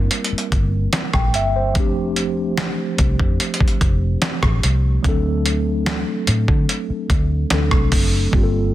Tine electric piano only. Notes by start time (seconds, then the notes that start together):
Already playing: G3 A#3 C4 E4 A#4
1.15 G5
1.35 E5
1.56 C5
1.74 F3 A3 C4
1.78 D4 G4
5.03 F#3 A3 C4
5.07 D4 A4
7.51 F#3 A3 C4 D4 A4
8.31 G3 A#3 C4
8.36 F4 G4
8.43 A4